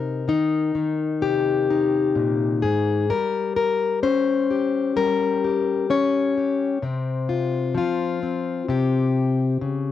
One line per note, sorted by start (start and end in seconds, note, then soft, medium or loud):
0.00 0.29 C3 medium
0.00 0.28 D#4 soft
0.00 3.05 A#4 soft
0.28 0.74 D#3 medium
0.28 1.69 D#4 medium
0.75 3.09 D#3 soft
1.21 2.63 C3 medium
1.21 2.62 G4 medium
1.70 3.05 D#4 soft
2.15 2.63 A#2 medium
2.62 3.10 G#2 medium
2.62 3.10 G#4 medium
3.10 4.96 G3 medium
3.10 3.55 A#4 loud
3.56 4.03 A#4 medium
4.03 5.89 C#4 medium
4.03 4.96 C5 medium
4.51 5.43 G4 soft
4.96 6.77 G3 medium
4.96 5.90 A#4 loud
5.44 6.36 G4 soft
5.90 6.77 C#4 medium
5.90 6.83 C#5 loud
6.38 6.78 G4 soft
6.82 7.75 C3 medium
6.82 8.22 C4 soft
7.29 7.76 F4 soft
7.75 8.62 F3 medium
7.75 8.69 F4 medium
8.23 9.64 C4 soft
8.69 9.61 C3 medium
8.69 9.92 G4 medium
9.61 9.92 C#3 medium